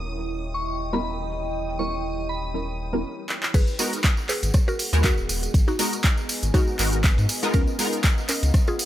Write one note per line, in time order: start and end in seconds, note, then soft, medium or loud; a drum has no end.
0.00 3.04 D#1 medium
0.00 0.89 G3 medium
0.00 0.89 B3 medium
0.00 0.90 C#4 medium
0.00 0.90 E4 medium
0.00 3.00 E4 medium
0.00 0.90 A#4 loud
0.00 3.00 C#5 medium
0.00 3.04 D#5 medium
0.00 3.00 G5 medium
0.00 3.04 G5 medium
0.00 3.04 D#6 medium
0.54 0.63 C#6 medium
0.68 0.75 C#6 medium
0.93 1.06 G3 loud
0.93 1.06 B3 medium
0.93 1.06 C#4 medium
0.93 1.06 E4 medium
0.93 1.06 A#4 loud
0.93 1.00 B5 medium
1.04 1.13 B5 medium
1.79 1.94 G3 medium
1.79 1.94 B3 medium
1.79 1.94 C#4 medium
1.79 1.94 E4 medium
1.79 1.95 A#4 loud
1.79 1.95 C#6 medium
2.29 3.00 B5 medium
2.54 2.76 G3 medium
2.54 2.76 B3 medium
2.54 2.76 C#4 medium
2.54 2.76 E4 medium
2.54 2.76 A#4 medium
2.93 3.04 G3 loud
2.93 3.04 B3 medium
2.93 3.04 C#4 medium
2.93 3.04 E4 medium
2.93 3.04 A#4 loud
3.29 clap medium
3.43 clap medium
3.54 3.64 G#1 loud
3.54 8.85 B3 medium
3.54 7.25 G#4 medium
3.54 3.75 G#4 medium
3.54 3.75 B4 loud
3.54 8.85 D#5 medium
3.54 5.52 F#5 medium
3.54 kick loud
3.54 closed hi-hat medium
3.54 crash loud
3.54 ride medium
3.54 tambourine medium
3.68 tambourine soft
3.79 4.89 G#3 medium
3.79 4.89 B3 medium
3.79 4.90 D#4 medium
3.79 4.90 F#4 medium
3.79 4.90 A#4 loud
3.79 open hi-hat loud
3.79 ride medium
3.79 tambourine loud
3.93 snare medium
3.93 closed hi-hat medium
3.93 tambourine soft
4.04 kick loud
4.04 snare loud
4.04 clap loud
4.04 closed hi-hat medium
4.04 ride medium
4.04 tambourine medium
4.17 tambourine soft
4.29 4.50 G#4 medium
4.29 4.50 B4 loud
4.29 clap medium
4.29 open hi-hat medium
4.29 ride medium
4.29 tambourine loud
4.43 4.51 G#1 medium
4.43 closed hi-hat medium
4.43 ride soft
4.43 tambourine soft
4.54 kick loud
4.54 cross-stick medium
4.54 closed hi-hat medium
4.54 ride medium
4.54 tambourine medium
4.68 4.87 F#4 medium
4.68 4.87 A#4 medium
4.68 tambourine soft
4.79 open hi-hat loud
4.79 ride medium
4.79 tambourine medium
4.93 5.10 D#2 medium
4.93 5.06 G#3 loud
4.93 5.06 B3 medium
4.93 5.06 D#4 medium
4.93 5.06 F#4 medium
4.93 5.06 A#4 loud
4.93 closed hi-hat medium
4.93 tambourine soft
5.04 5.25 F#4 medium
5.04 5.25 A#4 medium
5.04 kick loud
5.04 snare loud
5.04 clap loud
5.04 closed hi-hat medium
5.04 ride medium
5.04 tambourine medium
5.18 5.26 D#1 loud
5.18 tambourine soft
5.29 5.48 D#1 loud
5.29 open hi-hat loud
5.29 ride medium
5.29 tambourine medium
5.43 closed hi-hat medium
5.43 tambourine soft
5.54 5.64 G#1 loud
5.54 7.27 G#5 medium
5.54 kick loud
5.54 closed hi-hat medium
5.54 ride medium
5.54 tambourine medium
5.68 5.94 D#4 medium
5.68 5.94 F#4 loud
5.68 snare soft
5.68 tambourine soft
5.79 5.94 G#3 loud
5.79 5.94 B3 medium
5.79 5.94 D#4 medium
5.79 5.94 F#4 medium
5.79 5.95 A#4 loud
5.79 open hi-hat loud
5.79 ride medium
5.79 tambourine loud
5.93 closed hi-hat medium
5.93 tambourine soft
6.04 kick loud
6.04 snare loud
6.04 clap loud
6.04 closed hi-hat medium
6.04 ride medium
6.04 tambourine medium
6.17 tambourine soft
6.29 open hi-hat loud
6.29 ride medium
6.29 tambourine loud
6.43 6.51 G#1 medium
6.43 closed hi-hat medium
6.43 tambourine soft
6.54 6.76 G#3 medium
6.54 6.76 B3 medium
6.54 7.45 D#4 medium
6.54 6.76 D#4 medium
6.54 7.45 F#4 loud
6.54 6.76 F#4 medium
6.54 6.76 A#4 medium
6.54 kick loud
6.54 cross-stick medium
6.54 closed hi-hat medium
6.54 ride medium
6.54 tambourine medium
6.68 tambourine soft
6.79 7.17 G#1 loud
6.79 6.94 G#3 medium
6.79 6.94 B3 medium
6.79 6.94 D#4 medium
6.79 6.95 F#4 medium
6.79 6.95 A#4 loud
6.79 clap medium
6.79 open hi-hat loud
6.79 ride medium
6.79 tambourine loud
6.92 closed hi-hat medium
6.92 tambourine soft
7.04 kick loud
7.04 snare loud
7.04 clap loud
7.04 closed hi-hat medium
7.04 ride medium
7.04 tambourine medium
7.18 7.26 G#2 medium
7.18 ride soft
7.18 tambourine soft
7.29 8.85 A#4 medium
7.29 8.85 F5 medium
7.29 open hi-hat loud
7.29 ride medium
7.29 tambourine loud
7.43 7.76 G#3 loud
7.43 7.76 B3 loud
7.43 7.76 D#4 medium
7.43 7.76 F4 medium
7.43 7.77 A#4 loud
7.43 closed hi-hat medium
7.43 tambourine soft
7.54 7.64 C#2 loud
7.54 7.75 C#4 medium
7.54 7.75 A#4 loud
7.54 kick loud
7.54 closed hi-hat medium
7.54 ride medium
7.54 tambourine soft
7.67 tambourine soft
7.79 8.85 G#3 loud
7.79 8.85 B3 medium
7.79 8.85 D#4 medium
7.79 8.85 F4 medium
7.79 8.85 A#4 loud
7.79 open hi-hat loud
7.79 ride medium
7.79 tambourine medium
7.93 snare medium
7.93 closed hi-hat medium
7.93 tambourine soft
8.04 kick loud
8.04 snare loud
8.04 clap loud
8.04 closed hi-hat medium
8.04 ride loud
8.04 tambourine medium
8.18 tambourine soft
8.29 8.50 C#4 medium
8.29 8.50 A#4 loud
8.29 clap medium
8.29 open hi-hat loud
8.29 ride medium
8.29 tambourine loud
8.43 8.51 C#2 medium
8.43 closed hi-hat medium
8.43 ride soft
8.43 tambourine soft
8.54 kick loud
8.54 cross-stick medium
8.54 closed hi-hat medium
8.54 ride medium
8.54 tambourine medium
8.67 8.85 F4 medium
8.67 8.85 G#4 medium
8.67 tambourine soft
8.79 open hi-hat loud
8.79 ride medium
8.79 tambourine medium